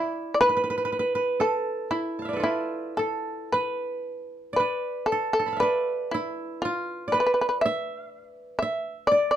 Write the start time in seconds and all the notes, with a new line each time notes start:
Already playing: E4 D5 E5
0.34 D5
0.41 B4
0.49 B4
0.57 B4
0.64 B4
0.70 B4
0.78 B4
0.85 B4
0.92 B4
0.99 B4
1.15 B4
1.40 A4
1.91 E4
2.19 F5 A5
2.25 D5 E5
2.33 A4 B4
2.40 E4 F4
2.97 A4
3.52 B4
4.53 B4 D5
4.60 B4
5.06 A4
5.12 A4
5.33 A4
5.39 A4
5.46 A5 B5
5.52 F5
5.57 B4 D5 E5
5.62 B4
6.11 E4
6.62 F4
7.08 D5
7.12 B4
7.20 B4
7.26 B4
7.34 B4
7.41 B4
7.49 B4
7.61 E5
7.66 E5
8.59 E5
9.07 D5
9.11 D5
9.31 D5